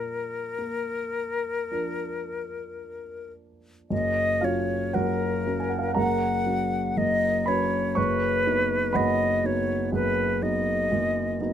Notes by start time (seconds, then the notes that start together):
Already playing: A#2 A#4
0.58 A#3
1.71 F3 D4 A#4
3.90 F#1 F#2 D#5
4.41 F#3 C#4 F4 C#5 F5
4.93 F#1 F#2 F#4 A#4 C#5 F#5
5.46 F#3 C#4
5.60 G#5
5.69 F#5
5.79 F5
5.88 F#5
5.94 F#1 F#2 A#4 F#5 A#5
6.46 F#3 C#4
6.97 F#1 F#2 D#5
7.46 F#3 C#4 B4 C#5 B5
7.95 F#1 F#2 B4 C#5 C#6
8.46 F#3 B3 D#4
8.93 F#1 F#2 B4 D#5 F#5 B5
9.43 F#3 B3 D#4 C#5
9.92 F#1 F#2 B4
10.42 F#3 B3 D#4 D#5
10.91 F#1 F#2
11.40 F#3 B3 D#4